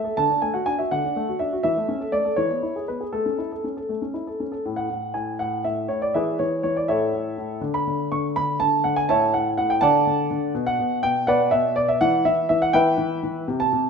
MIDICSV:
0, 0, Header, 1, 2, 480
1, 0, Start_track
1, 0, Tempo, 488599
1, 170, Time_signature, 6, 3, 24, 8
1, 2089, Tempo, 501253
1, 6409, Tempo, 488599
1, 13542, End_track
2, 0, Start_track
2, 0, Title_t, "Grand piano"
2, 0, Program_c, 0, 0
2, 0, Note_on_c, 0, 76, 68
2, 42, Note_on_c, 0, 69, 42
2, 165, Note_off_c, 0, 76, 0
2, 166, Note_off_c, 0, 69, 0
2, 168, Note_on_c, 0, 81, 85
2, 173, Note_on_c, 0, 50, 55
2, 288, Note_off_c, 0, 50, 0
2, 292, Note_on_c, 0, 62, 39
2, 385, Note_off_c, 0, 81, 0
2, 410, Note_on_c, 0, 80, 60
2, 415, Note_on_c, 0, 57, 41
2, 417, Note_off_c, 0, 62, 0
2, 527, Note_on_c, 0, 78, 56
2, 531, Note_off_c, 0, 80, 0
2, 532, Note_on_c, 0, 66, 43
2, 539, Note_off_c, 0, 57, 0
2, 648, Note_on_c, 0, 80, 75
2, 650, Note_off_c, 0, 78, 0
2, 654, Note_on_c, 0, 62, 36
2, 658, Note_off_c, 0, 66, 0
2, 770, Note_off_c, 0, 80, 0
2, 771, Note_on_c, 0, 76, 57
2, 777, Note_on_c, 0, 66, 40
2, 779, Note_off_c, 0, 62, 0
2, 891, Note_off_c, 0, 76, 0
2, 898, Note_on_c, 0, 78, 75
2, 900, Note_off_c, 0, 66, 0
2, 902, Note_on_c, 0, 50, 52
2, 1012, Note_off_c, 0, 50, 0
2, 1023, Note_on_c, 0, 62, 42
2, 1141, Note_off_c, 0, 62, 0
2, 1141, Note_on_c, 0, 57, 47
2, 1259, Note_off_c, 0, 57, 0
2, 1265, Note_on_c, 0, 66, 43
2, 1330, Note_off_c, 0, 78, 0
2, 1369, Note_on_c, 0, 76, 63
2, 1378, Note_on_c, 0, 62, 40
2, 1381, Note_off_c, 0, 66, 0
2, 1497, Note_off_c, 0, 62, 0
2, 1499, Note_on_c, 0, 66, 41
2, 1590, Note_off_c, 0, 76, 0
2, 1605, Note_on_c, 0, 76, 83
2, 1612, Note_off_c, 0, 66, 0
2, 1613, Note_on_c, 0, 52, 52
2, 1727, Note_off_c, 0, 52, 0
2, 1738, Note_on_c, 0, 57, 39
2, 1852, Note_on_c, 0, 61, 41
2, 1859, Note_off_c, 0, 57, 0
2, 1971, Note_on_c, 0, 69, 41
2, 1977, Note_off_c, 0, 61, 0
2, 2084, Note_on_c, 0, 74, 71
2, 2089, Note_on_c, 0, 57, 36
2, 2090, Note_off_c, 0, 76, 0
2, 2097, Note_off_c, 0, 69, 0
2, 2208, Note_on_c, 0, 69, 41
2, 2214, Note_off_c, 0, 57, 0
2, 2316, Note_on_c, 0, 73, 69
2, 2324, Note_off_c, 0, 74, 0
2, 2327, Note_off_c, 0, 69, 0
2, 2328, Note_on_c, 0, 52, 52
2, 2443, Note_off_c, 0, 52, 0
2, 2453, Note_on_c, 0, 59, 39
2, 2569, Note_on_c, 0, 64, 38
2, 2575, Note_off_c, 0, 59, 0
2, 2694, Note_off_c, 0, 64, 0
2, 2695, Note_on_c, 0, 68, 34
2, 2764, Note_off_c, 0, 73, 0
2, 2812, Note_on_c, 0, 71, 53
2, 2817, Note_on_c, 0, 59, 31
2, 2818, Note_off_c, 0, 68, 0
2, 2931, Note_on_c, 0, 68, 38
2, 2940, Note_off_c, 0, 59, 0
2, 2956, Note_off_c, 0, 71, 0
2, 3046, Note_on_c, 0, 69, 60
2, 3052, Note_off_c, 0, 68, 0
2, 3052, Note_on_c, 0, 57, 41
2, 3169, Note_off_c, 0, 57, 0
2, 3172, Note_on_c, 0, 61, 32
2, 3292, Note_on_c, 0, 64, 35
2, 3300, Note_off_c, 0, 61, 0
2, 3411, Note_off_c, 0, 69, 0
2, 3420, Note_off_c, 0, 64, 0
2, 3426, Note_on_c, 0, 69, 34
2, 3540, Note_on_c, 0, 61, 30
2, 3547, Note_off_c, 0, 69, 0
2, 3661, Note_on_c, 0, 69, 34
2, 3665, Note_off_c, 0, 61, 0
2, 3779, Note_on_c, 0, 57, 35
2, 3785, Note_off_c, 0, 69, 0
2, 3894, Note_off_c, 0, 57, 0
2, 3900, Note_on_c, 0, 61, 31
2, 4016, Note_on_c, 0, 64, 34
2, 4025, Note_off_c, 0, 61, 0
2, 4143, Note_on_c, 0, 69, 34
2, 4144, Note_off_c, 0, 64, 0
2, 4266, Note_on_c, 0, 61, 33
2, 4268, Note_off_c, 0, 69, 0
2, 4378, Note_on_c, 0, 69, 35
2, 4390, Note_off_c, 0, 61, 0
2, 4499, Note_off_c, 0, 69, 0
2, 4510, Note_on_c, 0, 45, 49
2, 4615, Note_on_c, 0, 78, 60
2, 4731, Note_off_c, 0, 45, 0
2, 4745, Note_on_c, 0, 45, 38
2, 4965, Note_off_c, 0, 45, 0
2, 4975, Note_on_c, 0, 80, 54
2, 4977, Note_off_c, 0, 78, 0
2, 4979, Note_on_c, 0, 45, 42
2, 5193, Note_off_c, 0, 80, 0
2, 5211, Note_off_c, 0, 45, 0
2, 5217, Note_on_c, 0, 78, 67
2, 5225, Note_on_c, 0, 45, 44
2, 5447, Note_off_c, 0, 45, 0
2, 5458, Note_off_c, 0, 78, 0
2, 5458, Note_on_c, 0, 76, 64
2, 5461, Note_on_c, 0, 45, 42
2, 5679, Note_off_c, 0, 45, 0
2, 5688, Note_on_c, 0, 73, 53
2, 5693, Note_on_c, 0, 45, 41
2, 5698, Note_off_c, 0, 76, 0
2, 5812, Note_off_c, 0, 73, 0
2, 5816, Note_on_c, 0, 74, 66
2, 5927, Note_off_c, 0, 45, 0
2, 5935, Note_off_c, 0, 74, 0
2, 5936, Note_on_c, 0, 76, 68
2, 5942, Note_on_c, 0, 52, 49
2, 5946, Note_on_c, 0, 68, 51
2, 5947, Note_on_c, 0, 71, 55
2, 6161, Note_off_c, 0, 52, 0
2, 6161, Note_off_c, 0, 68, 0
2, 6162, Note_off_c, 0, 71, 0
2, 6173, Note_off_c, 0, 76, 0
2, 6173, Note_on_c, 0, 73, 62
2, 6175, Note_on_c, 0, 52, 44
2, 6390, Note_off_c, 0, 73, 0
2, 6395, Note_off_c, 0, 52, 0
2, 6404, Note_on_c, 0, 73, 63
2, 6410, Note_on_c, 0, 52, 43
2, 6526, Note_off_c, 0, 73, 0
2, 6534, Note_on_c, 0, 74, 58
2, 6642, Note_off_c, 0, 52, 0
2, 6650, Note_on_c, 0, 76, 75
2, 6651, Note_off_c, 0, 74, 0
2, 6655, Note_on_c, 0, 45, 52
2, 6659, Note_on_c, 0, 73, 60
2, 6661, Note_on_c, 0, 69, 55
2, 6877, Note_off_c, 0, 45, 0
2, 6892, Note_on_c, 0, 45, 41
2, 7124, Note_off_c, 0, 45, 0
2, 7139, Note_on_c, 0, 45, 41
2, 7333, Note_off_c, 0, 76, 0
2, 7337, Note_off_c, 0, 73, 0
2, 7338, Note_off_c, 0, 69, 0
2, 7367, Note_on_c, 0, 50, 55
2, 7369, Note_off_c, 0, 45, 0
2, 7493, Note_on_c, 0, 83, 70
2, 7604, Note_off_c, 0, 50, 0
2, 7623, Note_on_c, 0, 50, 44
2, 7820, Note_off_c, 0, 83, 0
2, 7850, Note_off_c, 0, 50, 0
2, 7861, Note_on_c, 0, 85, 63
2, 7865, Note_on_c, 0, 50, 43
2, 8004, Note_off_c, 0, 85, 0
2, 8093, Note_off_c, 0, 50, 0
2, 8101, Note_on_c, 0, 83, 81
2, 8108, Note_on_c, 0, 50, 46
2, 8316, Note_off_c, 0, 83, 0
2, 8324, Note_off_c, 0, 50, 0
2, 8334, Note_on_c, 0, 81, 83
2, 8339, Note_on_c, 0, 50, 47
2, 8552, Note_off_c, 0, 81, 0
2, 8566, Note_off_c, 0, 50, 0
2, 8573, Note_on_c, 0, 78, 74
2, 8581, Note_on_c, 0, 50, 49
2, 8694, Note_on_c, 0, 80, 78
2, 8696, Note_off_c, 0, 78, 0
2, 8813, Note_off_c, 0, 50, 0
2, 8816, Note_off_c, 0, 80, 0
2, 8817, Note_on_c, 0, 81, 87
2, 8820, Note_on_c, 0, 45, 61
2, 8826, Note_on_c, 0, 76, 65
2, 8828, Note_on_c, 0, 73, 69
2, 9045, Note_off_c, 0, 76, 0
2, 9046, Note_off_c, 0, 73, 0
2, 9051, Note_off_c, 0, 45, 0
2, 9057, Note_off_c, 0, 81, 0
2, 9060, Note_on_c, 0, 78, 73
2, 9065, Note_on_c, 0, 45, 52
2, 9203, Note_off_c, 0, 78, 0
2, 9287, Note_off_c, 0, 45, 0
2, 9295, Note_on_c, 0, 78, 77
2, 9302, Note_on_c, 0, 45, 51
2, 9416, Note_off_c, 0, 78, 0
2, 9417, Note_on_c, 0, 79, 71
2, 9524, Note_on_c, 0, 81, 100
2, 9532, Note_off_c, 0, 45, 0
2, 9532, Note_on_c, 0, 50, 65
2, 9537, Note_off_c, 0, 79, 0
2, 9537, Note_on_c, 0, 78, 76
2, 9540, Note_on_c, 0, 74, 71
2, 9766, Note_off_c, 0, 50, 0
2, 9781, Note_on_c, 0, 50, 55
2, 9959, Note_off_c, 0, 81, 0
2, 9998, Note_off_c, 0, 50, 0
2, 10013, Note_on_c, 0, 50, 53
2, 10216, Note_off_c, 0, 78, 0
2, 10218, Note_off_c, 0, 74, 0
2, 10246, Note_off_c, 0, 50, 0
2, 10247, Note_on_c, 0, 47, 67
2, 10366, Note_on_c, 0, 78, 84
2, 10477, Note_off_c, 0, 47, 0
2, 10491, Note_on_c, 0, 47, 55
2, 10691, Note_off_c, 0, 78, 0
2, 10715, Note_off_c, 0, 47, 0
2, 10723, Note_on_c, 0, 79, 87
2, 10730, Note_on_c, 0, 47, 53
2, 10953, Note_off_c, 0, 47, 0
2, 10961, Note_on_c, 0, 78, 91
2, 10965, Note_off_c, 0, 79, 0
2, 10968, Note_on_c, 0, 47, 60
2, 10972, Note_on_c, 0, 71, 75
2, 10972, Note_on_c, 0, 74, 74
2, 11192, Note_off_c, 0, 47, 0
2, 11193, Note_off_c, 0, 71, 0
2, 11193, Note_off_c, 0, 74, 0
2, 11196, Note_on_c, 0, 76, 88
2, 11204, Note_off_c, 0, 78, 0
2, 11206, Note_on_c, 0, 47, 64
2, 11417, Note_off_c, 0, 76, 0
2, 11432, Note_off_c, 0, 47, 0
2, 11439, Note_on_c, 0, 74, 79
2, 11447, Note_on_c, 0, 47, 56
2, 11563, Note_off_c, 0, 74, 0
2, 11564, Note_on_c, 0, 76, 82
2, 11679, Note_off_c, 0, 47, 0
2, 11684, Note_on_c, 0, 78, 97
2, 11685, Note_off_c, 0, 76, 0
2, 11687, Note_on_c, 0, 52, 71
2, 11911, Note_off_c, 0, 52, 0
2, 11923, Note_off_c, 0, 78, 0
2, 11924, Note_on_c, 0, 76, 88
2, 11925, Note_on_c, 0, 52, 57
2, 12138, Note_off_c, 0, 76, 0
2, 12151, Note_off_c, 0, 52, 0
2, 12160, Note_on_c, 0, 76, 82
2, 12165, Note_on_c, 0, 52, 52
2, 12280, Note_off_c, 0, 76, 0
2, 12285, Note_on_c, 0, 78, 88
2, 12390, Note_off_c, 0, 52, 0
2, 12398, Note_on_c, 0, 79, 98
2, 12403, Note_off_c, 0, 78, 0
2, 12405, Note_on_c, 0, 52, 56
2, 12408, Note_on_c, 0, 76, 74
2, 12413, Note_on_c, 0, 71, 73
2, 12623, Note_off_c, 0, 52, 0
2, 12638, Note_on_c, 0, 52, 61
2, 12833, Note_off_c, 0, 79, 0
2, 12874, Note_off_c, 0, 52, 0
2, 12889, Note_on_c, 0, 52, 57
2, 13090, Note_off_c, 0, 76, 0
2, 13092, Note_off_c, 0, 71, 0
2, 13121, Note_off_c, 0, 52, 0
2, 13130, Note_on_c, 0, 48, 65
2, 13247, Note_on_c, 0, 81, 85
2, 13361, Note_off_c, 0, 48, 0
2, 13375, Note_on_c, 0, 48, 58
2, 13542, Note_off_c, 0, 48, 0
2, 13542, Note_off_c, 0, 81, 0
2, 13542, End_track
0, 0, End_of_file